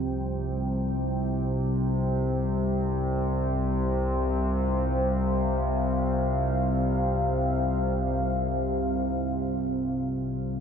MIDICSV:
0, 0, Header, 1, 4, 480
1, 0, Start_track
1, 0, Tempo, 500000
1, 10178, End_track
2, 0, Start_track
2, 0, Title_t, "Analog synth pad"
2, 0, Program_c, 0, 89
2, 0, Note_on_c, 0, 55, 81
2, 0, Note_on_c, 0, 60, 74
2, 0, Note_on_c, 0, 72, 76
2, 0, Note_on_c, 0, 79, 71
2, 3839, Note_on_c, 0, 77, 70
2, 4134, Note_off_c, 0, 79, 0
2, 10178, Note_off_c, 0, 55, 0
2, 10178, Note_off_c, 0, 60, 0
2, 10178, Note_off_c, 0, 72, 0
2, 10178, Note_off_c, 0, 77, 0
2, 10178, End_track
3, 0, Start_track
3, 0, Title_t, "Singing bowl"
3, 0, Program_c, 1, 14
3, 0, Note_on_c, 1, 53, 58
3, 0, Note_on_c, 1, 65, 57
3, 10178, Note_off_c, 1, 53, 0
3, 10178, Note_off_c, 1, 65, 0
3, 10178, End_track
4, 0, Start_track
4, 0, Title_t, "Synth drone"
4, 0, Program_c, 2, 95
4, 0, Note_on_c, 2, 36, 64
4, 0, Note_on_c, 2, 48, 69
4, 10178, Note_off_c, 2, 36, 0
4, 10178, Note_off_c, 2, 48, 0
4, 10178, End_track
0, 0, End_of_file